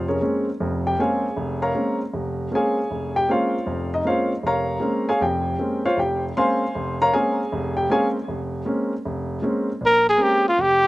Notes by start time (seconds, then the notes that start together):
Already playing: F1 F2
0.08 C#4 G#4 A#4 C#5
0.21 G#3 A#3 C4 C#4
0.60 F1 F2
0.87 G4 G5
0.99 G#3 A#3 C4 C#4 G#4 C#5 F5 G#5
1.36 F1
1.62 A#4 C#5 F5 A#5
1.75 G#3 A#3 C4 C#4
2.13 F1
2.51 G#3 A#3 C4 C#4 G#5
2.55 G#4 C#5 F5
2.91 F1
3.16 G4 G5
3.28 G#3 A#3 C4 C#4 F4 C5 C#5 F5
3.66 F1 F2
3.94 D#4 D#5
4.05 G#3 A#3 C4 C#4 F4 C5 C#5 F5
4.43 F1 A#4 C#5 F5 A#5
4.80 G#3 A#3 C4 C#4
5.09 G#4 C#5 F5 G#5
5.21 F1 F2 G4 G5
5.58 G#3 A#3 C4 C#4
5.85 F4 C5 C#5 F5
5.97 F1 G4 G5
6.37 G#3 A#3 C4 C#4 C5 F5 G#5 C6
6.75 F1
7.02 A#4 C#5 F5 A#5
7.13 G#3 A#3 C4 C#4 G#4 C#5 F5 G#5
7.52 F1
7.77 G4 G5
7.89 G#3 A#3 C4 C#4 G#4 C#5 F5 G#5
8.28 F1
8.65 G#3 A#3 C4 C#4
9.05 F1
9.42 G#3 A#3 C4 C#4
9.81 A#1
9.86 A#4
10.09 G#4
10.18 G#3 A#3 C4 C#4
10.23 G4
10.48 F4
10.58 F1 G4